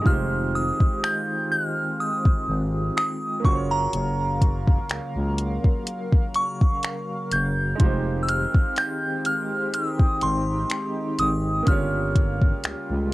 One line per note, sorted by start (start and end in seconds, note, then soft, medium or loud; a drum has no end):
0.00 3.38 G#3 medium
0.00 3.39 D#4 medium
0.00 3.40 F4 medium
0.00 3.40 G4 medium
0.06 0.72 F1 loud
0.06 3.41 D#3 medium
0.06 3.41 G#3 medium
0.06 3.41 C4 medium
0.06 3.41 F4 medium
0.06 3.42 G4 medium
0.06 0.56 F6 medium
0.06 kick loud
0.11 3.43 C5 medium
0.55 1.05 D#6 medium
0.80 0.89 G#1 soft
0.80 kick medium
1.04 1.53 G6 medium
1.04 finger snap loud
1.52 2.01 F6 medium
2.00 2.96 D#6 medium
2.25 2.34 G#1 soft
2.25 kick loud
2.48 2.91 G#1 medium
2.97 3.46 D#6 medium
2.97 finger snap loud
3.40 7.25 A#3 medium
3.40 7.26 C#4 medium
3.44 3.87 F#1 loud
3.44 7.76 C#3 medium
3.44 7.76 F#3 medium
3.44 7.76 A#3 medium
3.44 7.28 F4 medium
3.44 7.29 F#4 medium
3.44 7.76 A#4 medium
3.44 9.70 F5 medium
3.44 3.72 C#6 medium
3.44 kick loud
3.49 3.54 C5 medium
3.55 7.33 C#5 medium
3.71 6.43 A#5 medium
3.93 4.79 F#1 loud
3.93 closed hi-hat medium
4.41 kick medium
4.41 closed hi-hat medium
4.67 kick medium
4.90 5.00 C#2 soft
4.90 finger snap loud
4.90 closed hi-hat medium
5.16 5.59 C#2 medium
5.38 closed hi-hat medium
5.64 kick medium
5.87 closed hi-hat medium
6.12 kick loud
6.34 7.35 C#6 medium
6.34 closed hi-hat medium
6.61 kick loud
6.83 finger snap medium
6.83 closed hi-hat medium
7.32 7.74 F#1 medium
7.32 8.25 G6 medium
7.32 closed hi-hat medium
7.75 11.61 G#3 medium
7.75 11.62 D#4 medium
7.80 8.46 F1 loud
7.80 11.63 D#3 medium
7.80 11.63 G#3 medium
7.80 11.63 C4 medium
7.80 11.63 F4 medium
7.80 13.14 G4 medium
7.80 11.64 G4 medium
7.80 kick loud
7.80 closed hi-hat medium
7.85 11.65 C5 medium
8.23 8.29 E6 medium
8.29 8.79 F6 medium
8.29 closed hi-hat medium
8.54 8.63 G#1 medium
8.54 kick medium
8.76 9.27 G6 medium
8.76 finger snap loud
8.76 closed hi-hat medium
9.25 9.76 F6 medium
9.25 closed hi-hat medium
9.74 11.65 D#4 medium
9.74 10.24 D#6 medium
9.74 closed hi-hat medium
9.99 10.09 G#1 soft
9.99 kick loud
10.21 10.65 G#1 medium
10.21 11.22 C6 medium
10.21 closed hi-hat medium
10.70 finger snap loud
10.70 closed hi-hat medium
11.19 11.62 G#1 loud
11.19 11.69 D#6 medium
11.19 closed hi-hat medium
11.63 13.14 A#3 medium
11.63 13.14 C#4 medium
11.67 12.53 G1 loud
11.67 13.14 C#3 medium
11.67 13.14 G3 medium
11.67 13.14 A#3 medium
11.67 13.14 F4 medium
11.67 13.14 G4 medium
11.67 13.09 F6 medium
11.67 kick loud
11.67 closed hi-hat medium
11.72 13.14 C#5 medium
12.15 kick medium
12.15 closed hi-hat medium
12.42 kick medium
12.64 12.75 C#2 soft
12.64 finger snap loud
12.64 closed hi-hat medium
12.90 13.14 C#2 medium